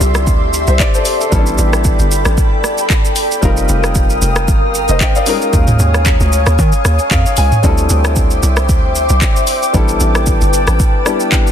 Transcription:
0.00 0.29 C2 loud
0.00 1.28 G3 medium
0.00 1.28 C4 medium
0.00 1.28 D4 medium
0.00 1.29 E4 medium
0.00 1.30 G4 medium
0.00 0.55 A4 medium
0.00 3.39 D5 medium
0.00 1.30 E5 medium
0.00 1.30 C6 medium
0.00 shaker loud
0.15 cross-stick loud
0.15 shaker medium
0.27 0.66 D2 loud
0.27 kick loud
0.27 shaker medium
0.54 shaker medium
0.67 0.79 C2 medium
0.67 0.80 C5 medium
0.67 0.79 E5 medium
0.67 shaker medium
0.80 0.93 D5 medium
0.80 kick loud
0.80 clap loud
0.80 shaker medium
0.94 1.19 A4 medium
0.94 1.19 C5 medium
0.94 shaker medium
1.05 open hi-hat medium
1.05 shaker medium
1.21 1.33 A4 medium
1.21 shaker medium
1.31 1.58 A1 loud
1.31 3.38 G3 medium
1.31 3.39 B3 medium
1.31 1.39 C#4 medium
1.31 3.39 E4 medium
1.31 3.41 A4 medium
1.31 3.40 A4 medium
1.31 5.23 G5 medium
1.31 3.41 B5 medium
1.31 kick loud
1.31 shaker medium
1.39 3.42 D4 medium
1.46 shaker medium
1.58 1.98 A1 loud
1.58 shaker medium
1.73 cross-stick medium
1.73 shaker medium
1.84 kick loud
1.84 shaker medium
1.99 2.25 G1 medium
1.99 shaker medium
2.11 shaker loud
2.25 2.37 A1 medium
2.25 cross-stick loud
2.25 shaker medium
2.38 kick loud
2.38 shaker medium
2.64 cross-stick medium
2.64 shaker medium
2.78 shaker medium
2.90 kick loud
2.90 clap loud
2.90 shaker medium
3.05 shaker medium
3.16 open hi-hat medium
3.16 shaker medium
3.31 shaker medium
3.41 3.68 F1 loud
3.41 5.23 G3 medium
3.41 5.23 C4 medium
3.41 5.23 D#4 medium
3.41 5.24 F4 medium
3.41 5.25 A#4 medium
3.41 5.24 A#4 medium
3.41 7.60 F5 medium
3.41 7.60 D#6 medium
3.41 kick loud
3.41 shaker medium
3.57 shaker medium
3.69 4.20 F1 loud
3.69 shaker medium
3.84 cross-stick medium
3.84 shaker medium
3.95 kick loud
3.95 shaker medium
4.10 shaker medium
4.22 4.50 F1 loud
4.22 shaker loud
4.36 cross-stick loud
4.36 shaker medium
4.48 4.87 G1 loud
4.48 kick loud
4.48 shaker medium
4.75 shaker medium
4.88 5.00 F1 medium
4.88 5.01 C5 medium
4.88 5.00 D#5 medium
4.88 shaker medium
5.01 5.15 D#5 medium
5.01 5.15 G5 medium
5.01 kick loud
5.01 clap loud
5.01 shaker medium
5.16 5.41 D5 medium
5.16 5.40 F5 medium
5.16 shaker medium
5.26 5.33 G3 medium
5.26 7.33 C#4 medium
5.26 7.34 D#4 medium
5.26 7.34 F4 medium
5.26 7.34 A#4 medium
5.26 7.61 C#5 medium
5.26 7.62 G#5 medium
5.26 open hi-hat medium
5.26 shaker medium
5.32 7.36 G#3 medium
5.42 shaker medium
5.53 5.79 D#2 loud
5.53 kick loud
5.53 shaker medium
5.67 mid tom loud
5.67 shaker medium
5.79 6.19 D#2 loud
5.79 shaker medium
5.94 cross-stick medium
5.94 shaker medium
6.06 kick loud
6.06 clap medium
6.06 shaker medium
6.20 6.46 D2 loud
6.20 shaker medium
6.33 shaker loud
6.46 6.58 D#2 medium
6.46 cross-stick loud
6.46 shaker medium
6.59 6.73 D#3 loud
6.59 kick loud
6.59 shaker medium
6.72 shaker medium
6.85 6.99 D#2 loud
6.85 cross-stick loud
6.85 shaker medium
6.99 shaker medium
7.11 7.25 F2 loud
7.11 7.36 F5 medium
7.11 kick loud
7.11 clap medium
7.11 shaker medium
7.26 shaker medium
7.37 7.52 C#2 medium
7.37 7.62 G#5 medium
7.37 open hi-hat medium
7.37 shaker loud
7.52 mid tom medium
7.52 shaker medium
7.63 7.89 D2 loud
7.63 9.70 G3 medium
7.63 9.70 C4 medium
7.63 9.71 D4 medium
7.63 9.71 E4 medium
7.63 9.71 A4 medium
7.63 9.72 C5 medium
7.63 9.72 E5 medium
7.63 11.52 G5 medium
7.63 11.52 D6 medium
7.63 kick loud
7.63 shaker medium
7.78 shaker medium
7.90 8.41 D2 loud
7.90 shaker medium
8.05 cross-stick loud
8.05 shaker medium
8.16 kick medium
8.16 shaker medium
8.31 shaker medium
8.43 8.71 C2 loud
8.43 shaker loud
8.57 cross-stick loud
8.57 shaker medium
8.69 9.08 D2 loud
8.69 kick loud
8.69 shaker medium
8.95 shaker medium
9.09 9.21 C2 medium
9.09 shaker medium
9.22 kick loud
9.22 clap loud
9.22 shaker medium
9.36 shaker medium
9.47 open hi-hat medium
9.47 shaker medium
9.63 shaker medium
9.73 10.00 A1 loud
9.73 11.03 G3 medium
9.73 11.03 B3 medium
9.73 11.04 D4 medium
9.73 11.04 E4 medium
9.73 11.04 A4 medium
9.73 11.52 B4 medium
9.73 11.52 A5 medium
9.73 kick loud
9.73 shaker medium
9.88 shaker medium
10.00 10.40 A1 loud
10.00 shaker loud
10.15 cross-stick loud
10.15 shaker medium
10.26 kick medium
10.26 shaker medium
10.41 10.67 G1 medium
10.41 shaker medium
10.54 shaker loud
10.67 10.79 A1 medium
10.67 cross-stick loud
10.67 shaker medium
10.80 kick loud
10.80 shaker medium
11.05 11.52 G3 medium
11.05 11.52 B3 medium
11.05 11.52 D4 medium
11.05 11.52 E4 medium
11.05 11.52 G4 medium
11.05 cross-stick loud
11.05 shaker loud
11.20 shaker medium
11.32 11.52 G5 medium
11.32 kick loud
11.32 clap loud
11.32 shaker medium
11.47 shaker medium

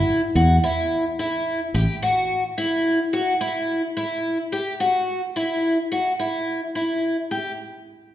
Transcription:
0.00 0.20 E4 medium
0.35 0.58 E2 medium
0.35 0.56 F#4 medium
0.64 1.04 E4 medium
1.19 1.59 E4 medium
1.74 1.86 A1 medium
1.74 1.95 G4 medium
2.02 2.43 F#4 medium
2.58 2.98 E4 medium
3.13 3.33 F#4 medium
3.41 3.81 E4 medium
3.97 4.37 E4 medium
4.52 4.73 G4 medium
4.80 5.20 F#4 medium
5.36 5.76 E4 medium
5.92 6.12 F#4 medium
6.19 6.60 E4 medium
6.75 7.16 E4 medium
7.31 7.51 G4 medium

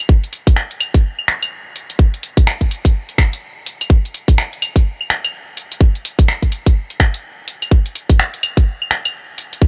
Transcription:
0.09 kick loud
0.24 closed hi-hat soft
0.33 open hi-hat medium
0.47 kick loud
0.47 closed hi-hat medium
0.56 finger snap loud
0.71 closed hi-hat soft
0.80 open hi-hat medium
0.80 claves medium
0.94 kick loud
0.94 open hi-hat soft
1.19 claves soft
1.28 finger snap loud
1.28 open hi-hat medium
1.43 closed hi-hat medium
1.43 claves medium
1.76 open hi-hat medium
1.90 closed hi-hat medium
1.99 kick loud
2.14 closed hi-hat soft
2.23 open hi-hat medium
2.37 kick loud
2.37 closed hi-hat medium
2.47 finger snap loud
2.61 kick medium
2.61 closed hi-hat soft
2.71 open hi-hat medium
2.85 kick loud
2.85 closed hi-hat medium
3.09 open hi-hat soft
3.18 finger snap loud
3.18 kick loud
3.18 open hi-hat medium
3.33 closed hi-hat medium
3.66 open hi-hat medium
3.81 closed hi-hat medium
3.81 claves soft
3.90 kick loud
4.05 closed hi-hat soft
4.14 open hi-hat medium
4.28 kick loud
4.28 closed hi-hat medium
4.38 finger snap loud
4.53 closed hi-hat soft
4.62 open hi-hat medium
4.62 claves medium
4.76 kick loud
4.76 open hi-hat soft
5.01 claves soft
5.10 finger snap loud
5.10 open hi-hat medium
5.25 closed hi-hat medium
5.25 claves medium
5.57 open hi-hat medium
5.72 closed hi-hat medium
5.81 kick loud
5.95 closed hi-hat soft
6.05 open hi-hat medium
6.19 kick loud
6.19 closed hi-hat medium
6.28 finger snap loud
6.43 kick medium
6.43 closed hi-hat soft
6.52 open hi-hat medium
6.66 kick loud
6.66 closed hi-hat medium
6.90 open hi-hat soft
7.00 finger snap loud
7.00 kick loud
7.00 open hi-hat medium
7.14 closed hi-hat medium
7.48 open hi-hat medium
7.62 closed hi-hat medium
7.62 claves soft
7.71 kick loud
7.86 closed hi-hat soft
7.95 open hi-hat medium
8.09 kick loud
8.09 closed hi-hat medium
8.19 finger snap loud
8.34 closed hi-hat soft
8.43 open hi-hat medium
8.43 claves medium
8.57 kick loud
8.57 open hi-hat soft
8.82 claves soft
8.91 finger snap loud
8.91 open hi-hat medium
9.05 closed hi-hat medium
9.05 claves medium
9.38 open hi-hat medium
9.53 closed hi-hat medium
9.62 kick loud

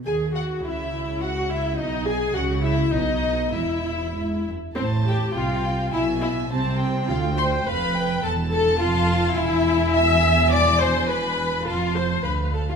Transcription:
0.05 0.61 D#2 medium
0.05 0.61 D#3 soft
0.05 0.33 G#4 medium
0.05 0.14 G#5 medium
0.35 0.64 F#4 medium
0.35 0.44 F#5 medium
0.35 0.45 F#5 medium
0.63 1.77 C#2 medium
0.63 1.77 C#3 medium
0.63 1.22 E4 medium
0.63 1.21 E5 medium
1.21 1.50 F#4 medium
1.21 1.30 F#5 medium
1.21 1.50 F#5 medium
1.49 1.78 E4 medium
1.49 1.78 E5 medium
1.49 1.79 E5 medium
1.78 2.36 B1 medium
1.78 2.36 B2 medium
1.78 2.06 D#4 medium
1.78 2.07 D#5 medium
2.06 2.35 G#4 medium
2.06 2.36 G#5 medium
2.35 2.90 C#2 medium
2.35 2.90 C#3 medium
2.35 2.65 F#4 medium
2.35 2.65 F#5 medium
2.35 2.44 F#5 medium
2.64 2.94 E4 medium
2.64 2.72 E5 medium
2.64 2.94 E5 medium
2.93 3.53 B1 medium
2.93 3.53 B2 medium
2.93 3.54 D#4 medium
2.93 3.53 D#5 medium
3.53 4.56 E1 medium
3.53 4.09 E2 medium
3.53 4.44 E4 medium
3.53 4.47 E5 medium
4.16 4.45 G#2 medium
4.47 4.55 F#2 medium
4.75 5.32 A1 medium
4.75 5.32 A2 medium
4.75 4.83 C4 medium
4.75 5.05 C5 medium
4.75 5.32 A5 medium
5.05 5.35 G4 medium
5.05 5.15 G5 medium
5.35 5.93 C2 medium
5.35 5.93 C3 medium
5.35 5.93 F4 medium
5.35 5.93 F5 medium
5.35 5.94 G5 medium
5.92 6.50 B1 medium
5.92 6.51 B2 medium
5.92 6.00 E4 medium
5.92 6.21 E5 medium
5.92 6.51 G#5 medium
6.22 6.30 E4 medium
6.22 6.51 E5 medium
6.51 7.08 C2 medium
6.51 7.08 C3 medium
6.51 7.07 C4 medium
6.51 7.08 C5 medium
6.51 6.80 A5 medium
6.79 7.64 G5 medium
7.08 7.66 D2 medium
7.08 7.67 D2 medium
7.08 7.37 F4 medium
7.08 7.17 F5 medium
7.37 7.66 C5 medium
7.37 7.45 C6 medium
7.66 8.23 F1 medium
7.66 8.23 F2 medium
7.66 8.24 B4 medium
7.66 7.95 F5 medium
7.66 8.23 B5 medium
7.97 8.25 G5 medium
8.23 8.81 E1 medium
8.23 8.81 E2 medium
8.23 8.31 A4 loud
8.23 8.32 A5 medium
8.23 8.82 A5 medium
8.52 8.81 A4 loud
8.52 8.81 A5 medium
8.80 9.39 F1 medium
8.80 9.39 F2 medium
8.80 9.37 F4 medium
8.80 9.39 F5 loud
8.80 9.38 A5 medium
9.37 11.63 E1 medium
9.37 11.64 E2 medium
9.37 9.95 E4 loud
9.37 9.96 E5 loud
9.37 11.64 G#5 medium
9.95 10.53 E5 loud
9.95 10.52 E6 medium
10.52 10.81 D5 loud
10.52 10.81 D6 medium
10.81 11.10 C5 medium
10.81 11.10 C6 medium
11.09 11.67 B4 medium
11.09 11.66 B5 medium
11.66 12.25 F1 medium
11.66 12.25 F2 medium
11.66 11.95 F4 medium
11.66 11.95 F5 medium
11.66 12.21 A5 medium
11.95 12.25 C5 medium
11.95 12.25 C6 medium
12.24 12.76 D2 medium
12.24 12.76 D2 soft
12.24 12.54 B4 medium
12.24 12.76 F5 soft
12.24 12.32 B5 medium
12.54 12.60 A4 medium
12.54 12.69 A5 soft
12.69 12.75 F4 soft
12.69 12.76 F5 soft

